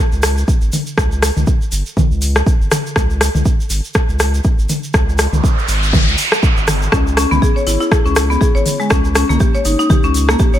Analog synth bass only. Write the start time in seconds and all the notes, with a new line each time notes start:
0.13 C#2
0.62 G#1
0.98 C#2
1.37 C#2
1.72 G1
2.11 C#2
2.60 G1
2.96 C#2
3.35 C#2
3.70 G#1
4.09 C#2
4.59 G#1
4.94 C#2
5.33 C#2
5.68 G#1
6.07 C#2
6.57 G#1
6.93 C#2
7.31 C#2
7.67 G#1
8.06 C#2
8.55 G#1
8.91 C#2
9.29 C#2
9.65 G1
10.04 C#2
10.53 G1